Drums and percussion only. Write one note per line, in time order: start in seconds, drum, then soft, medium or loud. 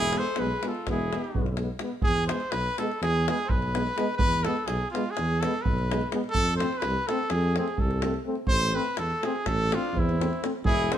0.13 davul high medium
0.25 davul high soft
0.36 davul high medium
0.63 davul high medium
0.75 davul high soft
0.87 davul high medium
0.87 davul low medium
1.13 davul high medium
1.24 davul high soft
1.35 davul low medium
1.46 davul high soft
1.57 davul high medium
1.79 davul high medium
2.02 davul low loud
2.15 davul high soft
2.29 davul high medium
2.40 davul high soft
2.52 davul high medium
2.78 davul high medium
2.92 davul high soft
3.03 davul high medium
3.28 davul high medium
3.39 davul high soft
3.49 davul low loud
3.62 davul high soft
3.75 davul high medium
3.87 davul high soft
3.98 davul high medium
4.09 davul high soft
4.19 davul low loud
4.33 davul high soft
4.45 davul high medium
4.57 davul high soft
4.68 davul high medium
4.95 davul high medium
5.06 davul high soft
5.17 davul high medium
5.43 davul high medium
5.54 davul high soft
5.65 davul low medium
5.78 davul high soft
5.92 davul high medium
6.01 davul high soft
6.12 davul high medium
6.24 davul high soft
6.34 davul low medium
6.48 davul high soft
6.60 davul high medium
6.72 davul high soft
6.82 davul high medium
7.09 davul high medium
7.19 davul high soft
7.30 davul high medium
7.56 davul high medium
7.68 davul high soft
7.78 davul low medium
7.91 davul high soft
8.02 davul high medium
8.14 davul high soft
8.35 davul high soft
8.47 davul low medium
8.85 davul high soft
8.97 davul high medium
9.10 davul high soft
9.23 davul high medium
9.36 davul high soft
9.46 davul high medium
9.46 davul low medium
9.72 davul high medium
9.85 davul high soft
9.97 davul low medium
10.09 davul high soft
10.21 davul high medium
10.33 davul high soft
10.44 davul high medium
10.65 davul low loud
10.79 davul high soft
10.92 davul high medium